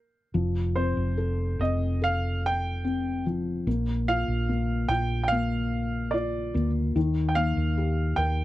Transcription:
0.34 fingered electric bass F1, felt piano F3
0.76 felt piano C4, grand piano C5
0.97 fingered electric bass F1
1.17 felt piano A4
1.59 fingered electric bass F1, felt piano C4, grand piano D#5
2.02 felt piano A4, grand piano F5
2.46 grand piano G5
2.85 felt piano C4
3.26 felt piano F3
3.67 fingered electric bass A#1, felt piano A#3
4.08 felt piano F4, grand piano F5
4.28 fingered electric bass A#1
4.49 felt piano A#3
4.89 fingered electric bass A#1, felt piano F4, grand piano G5
5.24 grand piano G5
5.28 grand piano F5
5.32 felt piano A#3
6.11 felt piano F4, grand piano D5
6.54 fingered electric bass D2, felt piano A#3
6.96 fingered electric bass D#2, felt piano D#3
7.29 grand piano G5
7.35 felt piano A#3, grand piano F5
7.57 fingered electric bass D#2
7.78 felt piano G4
8.16 fingered electric bass D#2, felt piano A#4, grand piano G5

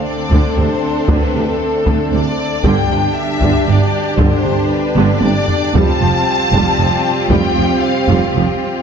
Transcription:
Already playing: trombone section D3 A3, viola section C4, french horn section C4 D4, violin section D4 A4
0.05 violin section D5
0.30 double bass section D2, tuba D2, cello section D2, viola section D3, taiko
0.57 double bass section D2, cello section D2, tuba D2, viola section C3, violin section C5
1.08 double bass section D2, cello section D2, tuba D2, viola section D3, violin section B4, taiko
1.34 double bass section D2, cello section D2, tuba D2, viola section C3
1.60 violin section A4
1.86 double bass section D2, tuba D2, cello section D2, viola section D3, taiko
2.12 double bass section D2, cello section D2, tuba D2, viola section C3, violin section D5
2.63 double bass section G1, tuba G1, cello section G2, french horn section B2 D4, viola section D3 D4, trombone section D3 G3, violin section D4 G4 G5, taiko
2.90 double bass section G1, tuba G1, cello section G2, viola section C3
3.17 violin section E5
3.41 double bass section G1, tuba G1, cello section G2, viola section D3, taiko
3.67 double bass section G1, tuba G1, cello section G2, viola section C3, violin section D5
4.18 double bass section G1, tuba G1, cello section G2, viola section D3, violin section C5, taiko
4.45 double bass section G1, tuba G1, cello section G2, viola section C3
4.69 violin section B4
4.96 double bass section G1, tuba G1, cello section G2, viola section D3, taiko high
5.21 double bass section G1, tuba G1, cello section G2, viola section C3, violin section D5, taiko high
5.48 taiko low
5.74 double bass section F1, tuba F1, cello section F2, trombone section C3 G3, viola section G3 C4, french horn section C4 F4, violin section F4 G4 A5, taiko
6.00 double bass section F1, tuba F1, cello section F2, viola section F3
6.52 tuba F1, double bass section F1, cello section F2, viola section G3, taiko
6.78 tuba F1, double bass section F1, cello section F2, viola section F3
7.30 tuba F1, double bass section F1, cello section F2, viola section G3, violin section G5, taiko
7.56 tuba F1, double bass section F1, cello section F2, viola section F3
7.82 violin section F5
8.08 double bass section F1, tuba F1, cello section F2, viola section G3, taiko
8.34 double bass section F1, tuba F1, cello section F2, viola section F3

